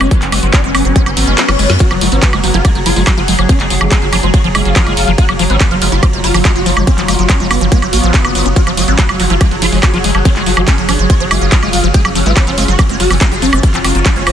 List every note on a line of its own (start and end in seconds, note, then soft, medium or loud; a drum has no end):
0.00 0.08 F#1 medium
0.00 1.79 F#3 medium
0.00 0.08 G#3 medium
0.00 1.82 B3 medium
0.00 0.06 C#4 medium
0.00 high woodblock medium
0.11 0.16 F#3 medium
0.11 0.16 F4 medium
0.11 kick loud
0.11 closed hi-hat loud
0.22 0.29 F#1 medium
0.22 0.25 F#3 medium
0.22 0.27 C#4 medium
0.22 clap soft
0.22 closed hi-hat soft
0.32 0.40 F#1 loud
0.32 0.39 G#3 medium
0.32 0.38 C#4 medium
0.32 open hi-hat loud
0.32 high woodblock soft
0.43 0.50 F#1 medium
0.43 0.47 F#3 medium
0.43 0.48 C#4 medium
0.43 closed hi-hat soft
0.53 0.56 F#3 medium
0.53 0.60 C#4 medium
0.53 0.59 D4 medium
0.53 kick loud
0.53 clap loud
0.53 closed hi-hat loud
0.64 0.71 F#1 medium
0.64 0.71 G#3 medium
0.64 0.71 C#4 medium
0.64 0.69 C#4 medium
0.64 closed hi-hat soft
0.75 0.82 F#1 loud
0.75 0.79 F#3 medium
0.75 0.80 C#4 medium
0.75 open hi-hat loud
0.75 high woodblock medium
0.85 0.92 F#1 medium
0.85 0.88 F#3 medium
0.85 0.90 C#4 medium
0.85 closed hi-hat soft
0.96 1.03 G#3 medium
0.96 1.01 C#4 medium
0.96 kick loud
0.96 closed hi-hat loud
0.96 reverse cymbal medium
1.06 1.14 F#1 medium
1.06 1.11 F#3 medium
1.06 1.12 C#4 medium
1.06 closed hi-hat soft
1.06 high woodblock soft
1.17 1.24 G#1 loud
1.17 1.20 F#3 medium
1.17 1.72 C#4 loud
1.17 open hi-hat loud
1.27 1.35 F#1 medium
1.27 1.34 G#3 medium
1.27 closed hi-hat soft
1.38 1.43 F#3 medium
1.38 snare medium
1.38 clap loud
1.38 closed hi-hat loud
1.49 1.56 F#1 medium
1.49 1.51 F#3 medium
1.49 snare medium
1.49 closed hi-hat soft
1.49 high woodblock medium
1.59 1.66 F#1 loud
1.59 1.66 G#3 medium
1.59 open hi-hat loud
1.70 1.77 F#2 loud
1.70 1.74 F#3 medium
1.70 snare medium
1.70 closed hi-hat soft
1.80 1.85 F#3 medium
1.80 14.32 F#3 medium
1.80 1.85 F#4 loud
1.80 5.20 G#4 medium
1.80 kick loud
1.80 closed hi-hat loud
1.80 ride medium
1.91 1.98 F#1 medium
1.91 1.95 F3 loud
1.91 1.96 F#3 medium
1.91 closed hi-hat soft
1.91 high woodblock soft
2.01 2.09 F#1 loud
2.01 2.07 F#3 medium
2.01 2.08 G#3 medium
2.01 open hi-hat loud
2.12 2.19 G#1 loud
2.12 2.17 F#3 medium
2.12 2.19 B3 medium
2.12 2.17 C#4 medium
2.12 closed hi-hat soft
2.22 2.27 F3 loud
2.22 2.28 F#3 medium
2.22 2.29 B3 medium
2.22 kick loud
2.22 clap loud
2.22 closed hi-hat loud
2.22 ride medium
2.33 2.40 F#1 medium
2.33 2.38 F#3 medium
2.33 2.40 G#3 medium
2.33 closed hi-hat soft
2.33 high woodblock medium
2.44 2.51 F#1 loud
2.44 2.48 F#3 medium
2.44 2.50 F#3 medium
2.44 2.49 F#3 medium
2.44 open hi-hat loud
2.54 2.61 F#1 loud
2.54 2.59 F3 loud
2.54 2.61 F#3 medium
2.54 2.59 F4 loud
2.54 closed hi-hat soft
2.65 2.70 F#3 medium
2.65 2.72 G#3 medium
2.65 kick loud
2.65 closed hi-hat loud
2.65 ride medium
2.65 high woodblock soft
2.75 2.83 F#1 medium
2.75 2.80 F#3 medium
2.75 2.81 F#3 medium
2.75 closed hi-hat soft
2.86 2.93 F#1 loud
2.86 2.90 F3 loud
2.86 2.91 F4 loud
2.86 open hi-hat loud
2.96 3.04 F#1 medium
2.96 3.02 F#3 medium
2.96 3.03 G#3 medium
2.96 open hi-hat medium
3.07 3.12 F#3 medium
3.07 kick loud
3.07 clap loud
3.07 closed hi-hat loud
3.07 ride medium
3.07 high woodblock medium
3.17 3.25 F#1 medium
3.17 3.22 F3 loud
3.17 3.23 F#4 medium
3.17 closed hi-hat soft
3.28 3.35 F#1 loud
3.28 3.33 F#3 medium
3.28 3.35 G#3 medium
3.28 open hi-hat loud
3.39 3.46 F#1 medium
3.39 3.44 F#3 medium
3.39 3.43 F#3 medium
3.39 closed hi-hat soft
3.39 high woodblock soft
3.49 3.54 F3 loud
3.49 3.54 C#4 medium
3.49 kick loud
3.49 closed hi-hat loud
3.49 ride medium
3.60 3.67 F#1 medium
3.60 3.65 F#3 medium
3.60 3.67 G#3 medium
3.60 clap soft
3.60 closed hi-hat soft
3.70 3.78 F#1 loud
3.70 3.76 F#3 medium
3.70 3.75 F#3 medium
3.70 open hi-hat loud
3.81 3.88 F#1 medium
3.81 3.86 F3 loud
3.81 3.86 F#3 medium
3.81 4.23 A3 medium
3.81 high woodblock medium
3.91 3.98 G#3 medium
3.91 3.97 C#4 medium
3.91 kick loud
3.91 clap loud
3.91 closed hi-hat loud
3.91 ride medium
4.02 4.09 F#1 medium
4.02 4.07 F#3 medium
4.02 closed hi-hat soft
4.13 4.20 F#1 loud
4.13 4.17 F3 loud
4.13 4.18 D4 medium
4.13 open hi-hat loud
4.13 high woodblock soft
4.23 4.30 F#1 medium
4.23 4.28 F#3 medium
4.23 4.30 G#3 medium
4.23 closed hi-hat soft
4.34 4.38 F#3 medium
4.34 4.39 F#4 medium
4.34 kick loud
4.34 closed hi-hat medium
4.34 ride medium
4.44 4.52 F#1 medium
4.44 4.49 F3 loud
4.44 4.50 F#3 medium
4.44 closed hi-hat soft
4.55 4.62 F#1 loud
4.55 4.62 G#3 medium
4.55 5.10 F4 loud
4.55 open hi-hat loud
4.55 high woodblock medium
4.65 4.73 F#1 loud
4.65 4.70 F#3 medium
4.65 closed hi-hat soft
4.76 4.81 F3 loud
4.76 kick loud
4.76 clap loud
4.76 closed hi-hat loud
4.76 ride medium
4.87 4.94 F#1 medium
4.87 4.93 G#3 medium
4.87 closed hi-hat soft
4.87 high woodblock soft
4.97 5.04 F#1 loud
4.97 5.02 F#3 medium
4.97 open hi-hat loud
5.08 5.15 F#1 loud
5.08 5.12 F3 loud
5.08 closed hi-hat soft
5.18 5.25 G#3 medium
5.18 8.58 F4 medium
5.18 5.23 F#4 loud
5.18 kick loud
5.18 closed hi-hat medium
5.18 ride medium
5.29 5.36 F#1 medium
5.29 5.34 F#3 medium
5.29 5.33 F#3 medium
5.29 closed hi-hat soft
5.29 high woodblock medium
5.39 5.47 F#1 loud
5.39 5.44 F3 loud
5.39 5.45 F#3 medium
5.39 open hi-hat loud
5.50 5.57 G#1 loud
5.50 5.57 G#3 medium
5.50 5.57 B3 medium
5.50 5.55 C#4 loud
5.50 closed hi-hat soft
5.60 5.66 F#3 medium
5.60 5.67 B3 medium
5.60 kick loud
5.60 clap loud
5.60 closed hi-hat medium
5.60 ride medium
5.60 high woodblock soft
5.71 5.78 F#1 medium
5.71 5.76 F3 loud
5.71 5.76 F#3 medium
5.71 5.78 F4 medium
5.71 closed hi-hat soft
5.82 5.89 F#1 loud
5.82 5.87 F#3 medium
5.82 5.89 G#3 medium
5.82 5.88 F4 medium
5.82 open hi-hat loud
5.92 5.99 F#1 medium
5.92 5.97 F#3 medium
5.92 5.97 F4 loud
5.92 closed hi-hat soft
6.03 6.07 F3 loud
6.03 6.08 F#3 medium
6.03 kick loud
6.03 closed hi-hat medium
6.03 ride medium
6.03 high woodblock medium
6.13 6.21 F#1 medium
6.13 6.18 F#3 medium
6.13 6.20 G#3 medium
6.13 closed hi-hat soft
6.24 6.31 F#1 loud
6.24 6.28 F#3 medium
6.24 6.29 F4 loud
6.24 open hi-hat loud
6.34 6.42 F#1 medium
6.34 6.39 F3 loud
6.34 6.40 F#3 medium
6.34 open hi-hat medium
6.34 high woodblock soft
6.45 6.50 F#3 medium
6.45 6.52 G#3 medium
6.45 kick loud
6.45 clap loud
6.45 closed hi-hat medium
6.45 ride medium
6.56 6.63 F#1 medium
6.56 6.60 F#3 medium
6.56 6.61 F#4 medium
6.56 closed hi-hat soft
6.66 6.73 F#1 loud
6.66 6.71 F3 loud
6.66 6.71 F#3 medium
6.66 open hi-hat loud
6.77 6.84 F#1 medium
6.77 6.82 F#3 medium
6.77 6.84 G#3 medium
6.77 closed hi-hat soft
6.77 high woodblock medium
6.87 6.92 F#3 medium
6.87 6.92 C#4 medium
6.87 kick loud
6.87 closed hi-hat medium
6.87 ride medium
6.98 7.05 F#1 medium
6.98 7.02 F3 loud
6.98 7.03 F#3 medium
6.98 clap soft
6.98 closed hi-hat soft
7.08 7.16 F#1 loud
7.08 7.14 F#3 medium
7.08 7.15 G#3 medium
7.08 open hi-hat loud
7.08 high woodblock soft
7.19 7.26 F#1 medium
7.19 7.24 F#3 medium
7.19 closed hi-hat soft
7.29 7.34 F3 loud
7.29 7.36 C#4 medium
7.29 7.35 C#4 medium
7.29 kick loud
7.29 clap loud
7.29 closed hi-hat medium
7.29 ride medium
7.40 7.47 F#1 medium
7.40 7.45 F#3 medium
7.40 7.47 G#3 medium
7.40 7.47 C#4 medium
7.40 closed hi-hat soft
7.51 7.58 F#1 loud
7.51 7.55 F#3 medium
7.51 7.56 B3 medium
7.51 open hi-hat loud
7.51 high woodblock medium
7.61 7.68 F#1 medium
7.61 7.66 F3 loud
7.61 7.66 F#3 medium
7.61 closed hi-hat soft
7.72 7.79 G#3 medium
7.72 7.77 B3 medium
7.72 kick loud
7.72 closed hi-hat medium
7.72 ride medium
7.82 7.90 F#1 medium
7.82 7.87 F#3 medium
7.82 7.88 F#3 medium
7.82 closed hi-hat soft
7.82 high woodblock soft
7.93 8.00 A1 loud
7.93 8.48 B3 loud
7.93 7.98 F#4 medium
7.93 open hi-hat loud
8.03 8.11 A1 loud
8.03 8.16 F3 loud
8.03 closed hi-hat soft
8.14 8.21 F#4 medium
8.14 kick loud
8.14 clap loud
8.14 closed hi-hat medium
8.14 ride medium
8.25 8.32 F#1 medium
8.25 8.31 F#3 medium
8.25 closed hi-hat soft
8.25 high woodblock medium
8.35 8.42 F#1 loud
8.35 8.42 F#3 medium
8.35 open hi-hat loud
8.46 8.53 F#1 medium
8.46 8.48 C#4 medium
8.46 closed hi-hat soft
8.56 8.61 F#3 medium
8.56 8.61 F#4 loud
8.56 11.96 G#4 medium
8.56 kick loud
8.56 closed hi-hat medium
8.56 ride medium
8.67 8.74 F#1 medium
8.67 8.71 F3 loud
8.67 8.72 F#3 medium
8.67 closed hi-hat soft
8.67 high woodblock soft
8.77 8.85 F#1 loud
8.77 8.83 F#3 medium
8.77 8.84 G#3 medium
8.77 open hi-hat loud
8.88 8.95 G#1 medium
8.88 8.93 F#3 medium
8.88 8.95 B3 medium
8.88 8.93 C#4 loud
8.88 closed hi-hat soft
8.99 9.03 F3 loud
8.99 9.04 F#3 medium
8.99 9.05 B3 medium
8.99 kick loud
8.99 clap loud
8.99 closed hi-hat medium
8.99 ride medium
9.09 9.16 F#1 medium
9.09 9.14 F#3 medium
9.09 9.16 G#3 medium
9.09 closed hi-hat soft
9.09 high woodblock medium
9.20 9.27 F#1 loud
9.20 9.24 F#3 medium
9.20 9.26 F#3 medium
9.20 9.25 F#3 medium
9.20 open hi-hat loud
9.30 9.37 F#1 medium
9.30 9.35 F3 loud
9.30 9.37 F#3 medium
9.30 9.35 F4 medium
9.30 closed hi-hat soft
9.41 9.46 F#3 medium
9.41 9.48 G#3 medium
9.41 kick loud
9.41 closed hi-hat medium
9.41 ride medium
9.41 high woodblock soft
9.51 9.59 F#1 medium
9.51 9.56 F#3 medium
9.51 9.57 F#3 medium
9.51 closed hi-hat soft
9.62 9.69 F#1 loud
9.62 9.66 F3 loud
9.62 9.67 F4 loud
9.62 open hi-hat loud
9.72 9.80 F#1 medium
9.72 9.78 F#3 medium
9.72 9.79 G#3 medium
9.72 open hi-hat medium
9.83 9.88 F#3 medium
9.83 kick loud
9.83 clap loud
9.83 closed hi-hat medium
9.83 ride medium
9.83 high woodblock medium
9.94 10.01 F#1 medium
9.94 9.98 F3 loud
9.94 9.99 F#4 loud
9.94 closed hi-hat soft
10.04 10.11 F#1 loud
10.04 10.09 F#3 medium
10.04 10.11 G#3 medium
10.04 open hi-hat loud
10.15 10.22 F#1 medium
10.15 10.19 F#3 medium
10.15 10.20 F#3 medium
10.15 closed hi-hat soft
10.15 high woodblock soft
10.25 10.30 F3 loud
10.25 10.31 C#4 medium
10.25 kick loud
10.25 closed hi-hat loud
10.25 ride medium
10.36 10.43 F#1 medium
10.36 10.41 F#3 medium
10.36 10.43 G#3 medium
10.36 clap soft
10.36 closed hi-hat soft
10.46 10.54 F#1 loud
10.46 10.51 F#3 medium
10.46 10.52 F#3 medium
10.46 open hi-hat loud
10.57 10.64 F#1 loud
10.57 10.62 F3 loud
10.57 10.62 F#3 medium
10.57 10.99 A3 medium
10.57 closed hi-hat soft
10.57 high woodblock medium
10.68 10.74 G#3 medium
10.68 10.73 C#4 medium
10.68 kick loud
10.68 clap loud
10.68 closed hi-hat loud
10.68 ride medium
10.78 10.85 F#1 medium
10.78 10.83 F#3 medium
10.78 closed hi-hat soft
10.89 10.96 F#1 loud
10.89 10.93 F3 loud
10.89 10.94 D4 medium
10.89 open hi-hat loud
10.89 high woodblock soft
10.99 11.06 F#1 medium
10.99 11.04 F#3 medium
10.99 11.06 G#3 medium
10.99 closed hi-hat soft
11.10 11.14 F#3 medium
11.10 11.15 F#4 medium
11.10 kick loud
11.10 closed hi-hat medium
11.10 ride medium
11.20 11.28 F#1 medium
11.20 11.25 F3 loud
11.20 11.26 F#3 medium
11.20 closed hi-hat soft
11.31 11.38 F#1 loud
11.31 11.38 G#3 medium
11.31 11.86 F4 loud
11.31 open hi-hat loud
11.31 high woodblock medium
11.41 11.49 F#1 loud
11.41 11.46 F#3 medium
11.41 closed hi-hat soft
11.52 11.57 F3 loud
11.52 kick loud
11.52 clap loud
11.52 closed hi-hat loud
11.52 ride medium
11.63 11.70 F#1 medium
11.63 11.70 G#3 medium
11.63 closed hi-hat soft
11.63 high woodblock soft
11.73 11.80 F#1 loud
11.73 11.78 F#3 medium
11.73 open hi-hat loud
11.84 11.91 F#1 loud
11.84 11.88 F3 loud
11.84 closed hi-hat soft
11.94 12.01 G#3 medium
11.94 14.32 F4 medium
11.94 12.00 G#4 loud
11.94 kick loud
11.94 closed hi-hat loud
11.94 ride medium
12.05 12.12 F#1 medium
12.05 12.09 F#3 medium
12.05 12.10 C#4 medium
12.05 closed hi-hat soft
12.05 high woodblock medium
12.15 12.23 F#1 loud
12.15 12.20 F3 loud
12.15 12.21 C#4 medium
12.15 open hi-hat loud
12.26 12.33 G#1 medium
12.26 12.33 G#3 medium
12.26 12.33 B3 medium
12.26 12.31 F4 loud
12.26 closed hi-hat soft
12.37 12.41 F#3 medium
12.37 12.43 B3 medium
12.37 12.42 C#4 medium
12.37 kick loud
12.37 clap loud
12.37 closed hi-hat loud
12.37 ride medium
12.37 high woodblock soft
12.47 12.54 F#1 medium
12.47 12.52 F3 loud
12.47 12.52 C#4 medium
12.47 12.54 F4 medium
12.47 closed hi-hat soft
12.58 12.65 F#1 loud
12.58 12.65 G#3 medium
12.58 12.63 C#4 medium
12.58 12.64 F4 medium
12.58 open hi-hat loud
12.68 12.75 F#1 medium
12.68 12.73 F#3 medium
12.68 12.73 F#4 loud
12.68 closed hi-hat soft
12.79 12.83 F3 loud
12.79 12.84 C#4 medium
12.79 kick loud
12.79 closed hi-hat loud
12.79 ride medium
12.79 high woodblock medium
12.89 12.97 F#1 medium
12.89 12.96 G#3 medium
12.89 12.95 C#4 medium
12.89 closed hi-hat soft
13.00 13.07 F#1 loud
13.00 13.05 F#3 medium
13.00 13.05 F#4 loud
13.00 open hi-hat loud
13.11 13.18 F#1 medium
13.11 13.15 F3 loud
13.11 13.16 C#4 medium
13.11 open hi-hat medium
13.11 high woodblock soft
13.21 13.28 G#3 medium
13.21 13.26 C#4 medium
13.21 kick loud
13.21 clap loud
13.21 closed hi-hat loud
13.21 ride medium
13.32 13.39 F#1 medium
13.32 13.36 F#3 medium
13.32 13.37 G#4 medium
13.32 closed hi-hat soft
13.42 13.49 F#1 loud
13.42 13.47 F3 loud
13.42 13.47 C#4 medium
13.42 open hi-hat loud
13.53 13.60 F#1 medium
13.53 13.60 G#3 medium
13.53 13.58 C#4 medium
13.53 closed hi-hat soft
13.53 high woodblock medium
13.63 13.68 F#3 medium
13.63 13.69 F4 medium
13.63 kick loud
13.63 closed hi-hat loud
13.63 ride medium
13.74 13.81 F#1 medium
13.74 13.78 F3 loud
13.74 13.79 C#4 medium
13.74 clap soft
13.74 closed hi-hat soft
13.84 13.92 F#1 loud
13.84 13.91 G#3 medium
13.84 13.90 C#4 medium
13.84 open hi-hat loud
13.84 high woodblock soft
13.95 14.02 F#1 medium
13.95 14.00 F#3 medium
13.95 14.00 C#4 medium
13.95 closed hi-hat soft
14.06 14.10 F3 loud
14.06 14.12 C#4 medium
14.06 14.11 D4 medium
14.06 kick loud
14.06 clap loud
14.06 closed hi-hat loud
14.06 ride medium
14.16 14.23 F#1 medium
14.16 14.23 G#3 medium
14.16 14.21 C#4 medium
14.16 14.23 C#4 medium
14.16 closed hi-hat soft
14.27 14.32 F#1 loud
14.27 14.31 F#3 medium
14.27 14.32 C#4 medium
14.27 open hi-hat loud
14.27 high woodblock medium